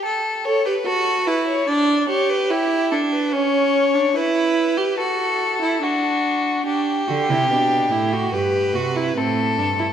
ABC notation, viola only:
X:1
M:4/4
L:1/16
Q:1/4=72
K:G
V:1 name="Viola"
z2 A G F2 E2 D2 G2 E2 D2 | ^C3 D E3 G F3 E D4 | D2 F E D2 E F G2 F E C2 D E |]